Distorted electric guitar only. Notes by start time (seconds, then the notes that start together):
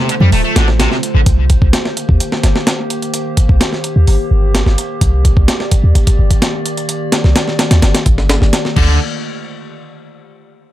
0.09 D3
0.21 G3
0.33 A3
0.44 A3
0.56 D3
0.79 C3
0.91 C3
1.15 D3
8.76 D3